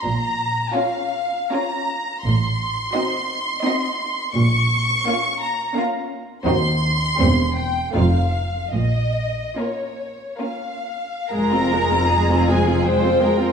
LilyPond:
<<
  \new Staff \with { instrumentName = "Violin section" } { \time 3/4 \key bes \minor \tempo 4 = 82 bes''4 f''4 bes''4 | c'''2. | des'''4. bes''8 r4 | c'''4. g''8 f''4 |
ees''4 des''4 f''4 | \key f \minor bes''4. aes''8 g''4 | }
  \new Staff \with { instrumentName = "Violin section" } { \time 3/4 \key bes \minor r4 <f' des''>4 <f' des''>4 | r4 <fis' ees''>4 <fis' ees''>4 | r4 <f' f''>4 <f' f''>4 | <ges' c''>4 <g' c''>4 <f' c''>4 |
r4 <f' bes'>4 <f' bes'>4 | \key f \minor bes'4 aes'4 c''8 bes'8 | }
  \new Staff \with { instrumentName = "Viola section" } { \time 3/4 \key bes \minor r4 <des' f'>8. r16 <des' f'>8. r16 | r4 <c' ees'>8. r16 <c' ees'>8. r16 | r4 <bes des'>8. r16 <bes des'>8. r16 | <c' ees'>8. r16 <bes c'>8. r16 <a ees'>8. r16 |
r4 <bes des'>8. r16 <bes des'>8. r16 | \key f \minor <aes aes'>16 <c' f'>16 <aes aes'>16 <c' f'>16 <aes aes'>16 <c' f'>16 <aes aes'>16 <c' f'>16 <aes aes'>16 <c' f'>16 <aes aes'>16 <c' f'>16 | }
  \new Staff \with { instrumentName = "Cello section" } { \clef bass \time 3/4 \key bes \minor bes,4 r2 | a,4 r2 | bes,4 r2 | ees,4 e,4 f,4 |
bes,4 r2 | \key f \minor f,2. | }
  \new Staff \with { instrumentName = "Double bass section" } { \clef bass \time 3/4 \key bes \minor bes,,4 r2 | a,,4 r2 | bes,,4 r2 | ees,4 e,,4 f,,4 |
bes,,4 r2 | \key f \minor f,,2. | }
>>